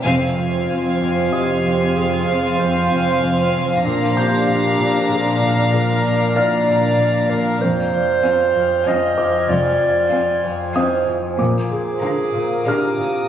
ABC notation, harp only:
X:1
M:3/4
L:1/8
Q:1/4=95
K:Fdor
V:1 name="Harp" clef=bass
[F,,C] F,, F,, F,, F,, F,, | F,, F,, F,, F,, F,, F,, | B,, B,, B,, B,, B,, B,, | B,, B,, B,, B,, B,, B,, |
F,, F,, F,, F,, F,, F,, | F,, F,, F,, F,, F,, F,, | B,, B,, B,, B,, B,, B,, |]